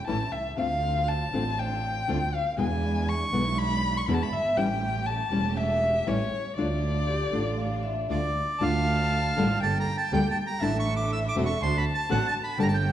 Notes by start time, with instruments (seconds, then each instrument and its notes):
0.06 double bass A1, nylon-string guitar E3 A3 C#4 E4, string section A3 C#4 E4, violin A5
0.32 double bass C2, violin E5
0.57 double bass D2, nylon-string guitar D3 A3 C4 F4, string section C4 D4 F4, violin F5
1.08 violin A5
1.33 double bass A1, nylon-string guitar D3 A3 C4 F4, string section C4 D4 F4
1.59 violin G5
2.08 double bass D2, nylon-string guitar D3 A3 C4 F4, string section C4 D4 F4
2.34 violin F5
2.57 double bass E2, nylon-string guitar B2 D3 G#3 B3 E4, string section G#3 D4 E4, violin G#5
3.09 violin C#6
3.32 double bass B1, nylon-string guitar B2 D3 G#3 B3 E4, string section G#3 D4 E4
3.58 violin B5
3.97 violin C#6
4.06 double bass E2, nylon-string guitar B2 D3 G#3 B3 E4, string section G#3 D4 E4, violin B5
4.14 violin A5
4.22 violin B5
4.32 double bass G1, violin E5
4.57 double bass A1, nylon-string guitar E3 G3 C#4 E4, string section A3 C#4 G4, violin G5
5.06 violin A5
5.31 double bass E1, nylon-string guitar E3 G3 C#4 E4, string section A3 C#4 G4
5.56 violin E5
6.07 double bass A1, nylon-string guitar E3 G3 C#4 E4, string section A3 C#4 G4, violin C#5
6.57 double bass D2, nylon-string guitar D3 A3 D4 F4, string section A3 D4 F4, violin D5
7.07 vibraphone G4
7.31 double bass A1, nylon-string guitar D3 A3 D4 F4, string section A3 D4 F4, vibraphone A4
7.57 vibraphone F5
7.83 vibraphone E5
8.08 double bass D2, nylon-string guitar D3 A3 D4 F4, string section A3 D4 F4, vibraphone D5, bandoneon D5
8.59 double bass D2, nylon-string guitar D3 A3 D4 F4, string section A3 D4 F4, bandoneon F5, violin A5
9.36 double bass A1, nylon-string guitar D3 G3 A#3 D4 A4, string section A3 D4 F4
9.60 double bass G1, string section A#3 G4 A4, violin G5, bandoneon A5
9.80 bandoneon A#5
9.98 bandoneon A5
10.12 double bass D2, nylon-string guitar D3 G3 A#3 D4 A4, string section A#3 G4 A4, bandoneon G5
10.31 bandoneon A5
10.47 bandoneon A#5
10.61 double bass A1, nylon-string guitar D3 A3 D4 E4, string section D4 E4 A4, violin E5, bandoneon A5
10.79 bandoneon C#6
10.96 bandoneon D6
11.13 bandoneon E6
11.29 bandoneon D6
11.35 double bass E1, nylon-string guitar D3 A3 C4 F#4, string section D4 E4 A4
11.46 bandoneon C#6
11.60 double bass D2, string section D4 F#4 C5, violin A5, bandoneon C6
11.78 bandoneon B5
11.95 bandoneon A5
12.09 double bass A1, nylon-string guitar D3 A3 C4 F#4, string section D4 F#4 C5, bandoneon F#5
12.27 bandoneon A5
12.44 bandoneon B5
12.58 double bass G1, nylon-string guitar D3 G3 A#3 D4 A4, string section A#3 G4 A4, violin G5, bandoneon A5
12.63 bandoneon A#5
12.68 bandoneon A5
12.74 bandoneon G5